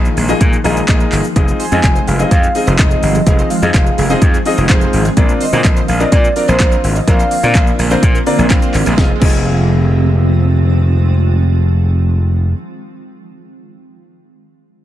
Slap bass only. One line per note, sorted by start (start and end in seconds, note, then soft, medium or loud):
0.17 0.32 A#1 loud
0.41 0.56 A#2 loud
0.65 0.80 A#1 medium
0.89 1.04 A#1 medium
1.12 1.20 G1 medium
1.36 1.51 F1 loud
1.72 1.79 F2 loud
1.84 1.99 F1 medium
2.08 2.23 F1 loud
2.31 2.46 F2 loud
2.67 2.75 F1 loud
2.79 2.94 F1 loud
3.03 3.18 G1 loud
3.27 3.42 F1 loud
3.62 3.70 F2 loud
3.74 3.89 F1 medium
3.98 4.13 F1 loud
4.22 4.37 F2 loud
4.58 4.65 F1 medium
4.70 4.85 F1 loud
4.93 5.08 G#1 loud
5.17 5.32 A#1 loud
5.53 5.60 A#2 loud
5.65 5.80 A#1 medium
5.89 6.04 A#1 loud
6.12 6.27 A#2 loud
6.48 6.56 A#1 medium
6.60 6.75 A#1 medium
6.84 6.99 G#1 loud
7.08 7.23 A#1 loud
7.43 7.57 A#2 medium
7.55 7.70 A#1 medium
7.79 7.94 A#1 medium
8.03 8.18 A#2 loud
8.38 8.46 A#1 medium
8.74 8.82 G#1 medium
8.86 8.94 A#1 medium
8.98 9.11 F1 loud
9.22 12.53 F1 loud